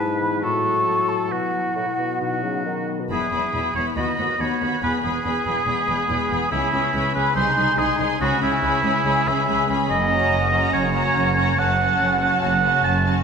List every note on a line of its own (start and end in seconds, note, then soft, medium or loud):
0.00 0.44 G#2 soft
0.00 0.45 G#2 soft
0.00 0.45 G#3 soft
0.00 0.44 B3 soft
0.00 0.44 E4 soft
0.00 0.45 B4 soft
0.00 0.21 A5 medium
0.22 0.45 E3 soft
0.22 0.42 B5 medium
0.42 1.30 A2 soft
0.42 1.33 A2 soft
0.42 1.31 F#4 soft
0.42 1.34 A4 soft
0.42 1.10 C#6 medium
0.65 1.53 F#3 soft
0.87 1.33 C#4 soft
1.09 1.33 A3 soft
1.09 1.31 A5 medium
1.31 1.71 B2 soft
1.31 2.20 B2 soft
1.31 2.22 E4 soft
1.31 2.21 F#4 soft
1.31 2.85 F#5 soft
1.54 2.42 F#3 soft
1.76 1.86 A2 soft
1.76 2.22 E4 soft
1.98 2.44 B2 soft
1.98 2.87 B3 soft
2.20 3.13 B2 soft
2.20 2.88 D#4 soft
2.20 2.87 F#4 soft
2.43 2.65 C#3 soft
2.43 3.12 F#3 soft
2.66 3.02 D#3 soft
2.66 3.12 D#4 soft
2.88 3.31 B3 soft
3.00 3.11 B2 soft
3.10 3.19 E1 soft
3.10 3.19 E2 soft
3.10 3.98 E3 soft
3.10 3.32 B3 soft
3.10 3.31 E4 soft
3.10 3.72 G#4 medium
3.10 3.31 B5 soft
3.32 3.41 E1 soft
3.32 3.41 E2 soft
3.32 4.17 B3 soft
3.32 3.54 B3 soft
3.32 3.53 E4 soft
3.32 3.52 B5 soft
3.53 3.62 E1 soft
3.53 3.62 E2 soft
3.53 3.75 B3 soft
3.53 3.98 E4 soft
3.53 3.74 E4 soft
3.53 3.73 B5 soft
3.75 3.83 E1 soft
3.75 3.83 E2 soft
3.75 3.96 B3 soft
3.75 3.96 E4 soft
3.75 3.98 G#4 soft
3.75 3.85 C#5 soft
3.75 3.95 B5 soft
3.96 4.04 D#2 soft
3.96 4.05 D#2 soft
3.96 4.84 D#3 soft
3.96 4.18 B3 soft
3.96 4.17 F#4 soft
3.96 4.42 D#5 soft
3.96 4.16 B5 soft
4.17 4.26 D#2 soft
4.17 4.27 D#2 soft
4.17 4.60 B3 soft
4.17 4.39 B3 soft
4.17 4.39 F#4 soft
4.17 4.38 B5 soft
4.39 4.48 D#2 soft
4.39 4.60 B3 soft
4.39 4.84 F#4 soft
4.39 4.60 F#4 soft
4.39 4.83 C#5 soft
4.39 4.60 B5 soft
4.61 4.69 D#2 soft
4.61 4.70 D#2 soft
4.61 5.03 B3 soft
4.61 4.82 B3 soft
4.61 4.83 F#4 soft
4.61 4.81 B5 soft
4.82 4.91 E1 soft
4.82 4.91 E2 soft
4.82 6.54 E3 soft
4.82 5.03 B3 soft
4.82 5.03 G#4 soft
4.82 4.93 B4 medium
4.82 5.02 B5 soft
5.03 5.12 E1 soft
5.03 5.12 E2 soft
5.03 5.87 B3 soft
5.03 5.24 B3 soft
5.03 6.49 G#4 medium
5.03 5.25 G#4 soft
5.03 5.23 B5 soft
5.24 5.33 E1 soft
5.24 5.33 E2 soft
5.24 5.45 B3 soft
5.24 5.46 G#4 soft
5.24 6.09 B4 soft
5.24 5.44 B5 soft
5.46 5.55 E1 soft
5.46 5.55 E2 soft
5.46 5.66 B3 soft
5.46 6.29 G#4 soft
5.46 5.67 G#4 soft
5.46 5.65 B5 soft
5.66 5.75 E1 soft
5.66 5.75 E2 soft
5.66 7.55 G#3 soft
5.66 5.87 B3 soft
5.66 5.88 G#4 soft
5.66 5.87 B5 soft
5.88 5.97 E1 soft
5.88 5.97 E2 soft
5.88 7.38 B3 soft
5.88 6.08 B3 soft
5.88 6.09 G#4 soft
5.88 6.08 B5 soft
6.09 6.18 E1 soft
6.09 6.18 E2 soft
6.09 6.30 B3 soft
6.09 6.30 G#4 soft
6.09 6.92 B4 soft
6.09 6.30 B5 soft
6.30 6.40 E1 soft
6.30 6.39 E2 soft
6.30 6.52 B3 soft
6.30 7.14 G#4 soft
6.30 6.51 G#4 soft
6.30 6.50 B5 soft
6.51 6.60 C#2 soft
6.51 6.61 C#2 soft
6.51 7.38 C#3 soft
6.51 6.72 C#4 soft
6.51 7.14 E4 medium
6.51 6.73 G#4 soft
6.51 6.72 B5 soft
6.73 6.81 C#2 soft
6.73 6.82 C#2 soft
6.73 7.38 C#4 soft
6.73 6.93 C#4 soft
6.73 6.94 G#4 soft
6.73 6.93 B5 soft
6.94 7.02 C#2 soft
6.94 7.03 C#2 soft
6.94 7.14 C#4 soft
6.94 7.14 G#4 soft
6.94 7.38 B4 soft
6.94 7.15 B5 soft
7.15 7.23 C#2 soft
7.15 7.24 C#2 soft
7.15 7.36 C#4 soft
7.15 8.83 G#4 soft
7.15 7.35 G#4 soft
7.15 7.35 B4 medium
7.15 7.37 B5 soft
7.35 7.44 C2 soft
7.35 8.22 C3 soft
7.35 7.55 D#4 soft
7.35 7.56 G#4 soft
7.35 7.80 C5 medium
7.35 7.57 C6 soft
7.57 7.65 C2 soft
7.57 9.04 G#3 soft
7.57 7.76 D#4 soft
7.57 7.78 G#4 soft
7.57 7.78 C6 soft
7.78 7.86 C2 soft
7.78 7.87 C2 soft
7.78 7.98 D#4 soft
7.78 8.22 D#4 soft
7.78 8.20 G#4 medium
7.78 7.99 G#4 soft
7.78 7.99 C6 soft
7.99 8.07 C2 soft
7.99 8.08 C2 soft
7.99 8.20 D#4 soft
7.99 8.20 G#4 soft
7.99 8.22 C5 soft
7.99 8.21 C6 soft
8.20 8.28 C#2 soft
8.20 8.29 C#2 soft
8.20 9.92 C#3 medium
8.20 8.41 C#4 soft
8.20 8.42 F#4 medium
8.20 8.41 G#4 soft
8.20 8.42 B5 soft
8.41 8.49 C#2 soft
8.41 8.50 C#2 soft
8.41 9.26 C#4 soft
8.41 8.62 C#4 soft
8.41 9.29 E4 medium
8.41 8.62 G#4 soft
8.41 8.63 B5 soft
8.62 8.70 C#2 soft
8.62 8.71 C#2 soft
8.62 8.83 C#4 soft
8.62 8.83 G#4 soft
8.62 9.47 B4 soft
8.62 8.84 B5 soft
8.84 8.92 C#2 soft
8.84 8.93 C#2 soft
8.84 9.04 C#4 soft
8.84 9.68 G#4 soft
8.84 9.04 G#4 soft
8.84 9.05 B5 soft
9.05 9.14 C#2 soft
9.05 9.14 C#2 medium
9.05 9.92 G#3 soft
9.05 9.26 C#4 soft
9.05 9.27 G#4 soft
9.05 9.27 B5 soft
9.27 9.35 C#2 soft
9.27 10.30 C#4 soft
9.27 9.47 C#4 soft
9.27 9.48 G#4 soft
9.27 9.69 E5 medium
9.27 9.48 B5 soft
9.48 9.57 C#2 soft
9.48 9.68 C#4 soft
9.48 9.69 G#4 soft
9.48 9.92 B4 soft
9.48 9.69 B5 soft
9.69 9.77 C#2 soft
9.69 9.90 C#4 soft
9.69 9.92 G#4 soft
9.69 9.90 G#4 soft
9.69 9.90 B5 soft
9.90 10.27 F#1 medium
9.90 11.57 F#2 medium
9.90 10.27 F#2 medium
9.90 10.69 D#5 medium
10.10 10.93 A#3 soft
10.10 10.51 C#4 soft
10.10 10.51 F#4 soft
10.10 10.51 A#5 soft
10.31 10.68 F#1 medium
10.31 10.68 F#2 medium
10.31 11.13 C#4 soft
10.52 10.93 C#4 soft
10.52 10.93 F#4 soft
10.52 11.35 A#4 soft
10.52 10.93 A#5 soft
10.73 11.10 F#1 medium
10.73 11.10 F#2 medium
10.73 11.61 C#3 soft
10.73 11.60 C#5 medium
10.94 11.61 A#3 soft
10.94 11.36 C#4 soft
10.94 11.35 F#4 soft
10.94 11.36 A#5 soft
11.14 11.54 F#1 medium
11.14 11.54 F#2 soft
11.14 12.00 C#4 soft
11.37 11.58 C#4 soft
11.37 11.58 F#4 soft
11.37 11.61 A#4 soft
11.37 11.59 A#5 soft
11.58 11.96 F#1 medium
11.58 13.23 F#2 medium
11.58 11.96 F#2 medium
11.58 11.80 C#4 soft
11.58 11.80 F#4 soft
11.58 12.41 F#5 medium
11.58 11.80 A5 soft
11.80 12.63 A3 soft
11.80 12.22 C#4 soft
11.80 12.22 F#4 soft
11.80 12.20 A5 soft
12.01 12.38 F#1 medium
12.01 12.38 F#2 soft
12.01 12.83 C#4 soft
12.22 12.63 C#4 soft
12.22 12.62 F#4 soft
12.22 13.04 C#5 soft
12.22 12.62 A5 soft
12.42 12.80 F#1 medium
12.42 12.80 F#2 soft
12.42 13.23 C#3 soft
12.42 12.83 F#5 medium
12.64 13.23 A3 soft
12.64 13.05 C#4 soft
12.64 13.05 F#4 soft
12.64 13.05 A5 soft
12.84 13.22 F#1 soft
12.84 13.21 F#2 medium
12.84 13.23 C#4 soft
12.84 13.05 A5 medium
13.05 13.23 C#4 soft
13.05 13.23 F#4 soft
13.05 13.23 C#5 soft
13.05 13.23 A5 soft